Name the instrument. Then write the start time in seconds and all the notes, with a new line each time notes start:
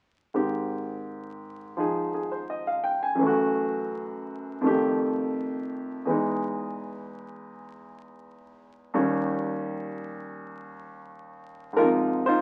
grand piano
0.34 G#2 D#3 C4 G4
1.77 F3 D#4 G#4
2.14 G#4
2.32 C5
2.50 D#5
2.67 F5
2.84 G5
3.03 G#5
3.15 F#2 E3
3.23 A3 F#4
4.61 F2 D#3 A3
4.67 G4
6.05 E2 E3 G#3
6.10 D#4
8.94 D#2 D#3 G3 C#4
11.73 G#2 F3 A#4
11.78 A#3 D#4 F4
11.84 C3
12.26 D#4 F4 C5